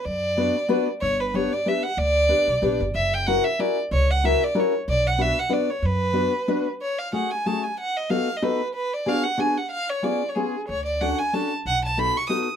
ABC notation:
X:1
M:3/4
L:1/16
Q:"Swing" 1/4=186
K:Bm
V:1 name="Violin"
d8- d2 z2 | c2 B2 c2 d2 e2 f2 | d8- d2 z2 | e2 g2 f2 e2 d2 z2 |
c2 f2 e2 d2 c2 z2 | d2 f2 e2 f2 d2 c2 | B8- B2 z2 | [K:F#m] c2 ^e2 f2 g2 a2 g2 |
f2 ^d2 ^e3 d B3 z | B2 d2 ^e2 f2 g2 f2 | ^e2 c2 d3 c G3 z | c2 d2 f2 g2 a2 z2 |
f2 a2 b2 c'2 ^d'2 z2 |]
V:2 name="Steel-string acoustic guitar"
z4 [B,DFB]2 z2 [B,DFB]2 z2 | z4 [B,DGB]2 z2 [B,DGB]2 z2 | z4 [B,DGB]2 z2 [B,DGB]2 z2 | z4 [CEF^A]2 z2 [CEFA]2 z2 |
z4 [CEF^A]2 z2 [CEFA]2 z2 | z4 [B,DFB]2 z2 [B,DFB]2 z2 | z4 [B,DFB]2 z2 [B,DFB]2 z2 | [K:F#m] z4 [A,CFG]2 z2 [A,CFG]2 z2 |
z4 [B,^DFA]2 z2 [B,DFA]2 z2 | z4 [B,DFG]2 z2 [B,DFG]2 z2 | z4 [B,C^EG]2 z2 [B,CEG]2 z2 | z4 [CDFA]2 z2 [CDFA]2 z2 |
z4 [B,^DFA]2 z2 [B,DFA]2 z2 |]
V:3 name="Upright bass" clef=bass
F,,8 z4 | G,,,8 z4 | D,,6 B,,,2 ^A,,,2 G,,,2 | F,,,8 z4 |
C,,8 z4 | B,,,8 z4 | F,,8 z4 | [K:F#m] z12 |
z12 | z12 | z12 | D,,8 z4 |
B,,,8 z4 |]